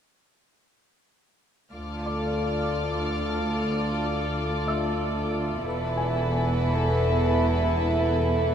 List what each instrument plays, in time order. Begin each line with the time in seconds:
1.73 double bass section D2, cello section D2, violin section F4 A4 D5 D6 F6, glass harmonica F4 A4 A5
2.05 felt piano D5 D6
4.67 felt piano E5 E6
5.64 double bass section E1, cello section E2, violin section E4 A4 B4, glass harmonica A4 E5 B5
5.97 felt piano G#5